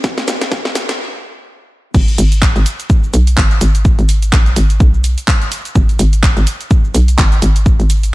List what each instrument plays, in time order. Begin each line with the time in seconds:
0.04 fm bass G#1, kick, snare, cabasa
0.18 snare, closed hi-hat, cabasa
0.28 fm bass G#1, snare, open hi-hat, cabasa
0.41 snare, closed hi-hat, cabasa
0.52 fm bass G#1, kick, snare, cabasa
0.65 snare, closed hi-hat
0.75 snare, open hi-hat, cabasa
0.89 snare, closed hi-hat, cabasa
1.95 fm bass G#1, kick, crash, cabasa
2.08 closed hi-hat, cabasa
2.18 fm bass G#1, open hi-hat, cabasa
2.32 closed hi-hat, cabasa
2.42 kick, clap, cabasa
2.56 fm bass G#1, closed hi-hat, cabasa
2.66 open hi-hat, cabasa
2.80 closed hi-hat, cabasa
2.90 kick, cabasa
3.03 cabasa
3.14 fm bass B1, open hi-hat, cabasa
3.27 closed hi-hat, cabasa
3.37 fm bass G#1, kick, clap, cabasa
3.51 closed hi-hat, cabasa
3.61 fm bass G#1, open hi-hat, cabasa
3.75 closed hi-hat, cabasa
3.85 kick, cabasa
3.99 fm bass G#1, closed hi-hat, cabasa
4.09 open hi-hat, cabasa
4.22 closed hi-hat, cabasa
4.33 fm bass A#1, kick, clap, cabasa
4.46 closed hi-hat, cabasa
4.56 fm bass G#1, open hi-hat, cabasa
4.70 closed hi-hat, cabasa
4.80 fm bass B1, kick, cabasa
4.94 cabasa
5.04 open hi-hat, cabasa
5.18 closed hi-hat, cabasa
5.28 kick, clap, cabasa
5.42 closed hi-hat, cabasa
5.52 open hi-hat, cabasa
5.65 closed hi-hat, cabasa
5.75 fm bass G#1, kick, cabasa
5.89 closed hi-hat, cabasa
5.99 fm bass G#1, open hi-hat, cabasa
6.13 closed hi-hat, cabasa
6.23 kick, clap, cabasa
6.37 fm bass G#1, closed hi-hat, cabasa
6.47 open hi-hat, cabasa
6.61 closed hi-hat, cabasa
6.71 kick, cabasa
6.84 cabasa
6.95 fm bass B1, open hi-hat, cabasa
7.08 closed hi-hat, cabasa
7.18 fm bass G#1, kick, clap, cabasa
7.32 closed hi-hat, cabasa
7.42 fm bass G#1, open hi-hat, cabasa
7.56 closed hi-hat, cabasa
7.66 kick, cabasa
7.80 fm bass G#1, closed hi-hat, cabasa
7.90 open hi-hat, cabasa
8.03 closed hi-hat, cabasa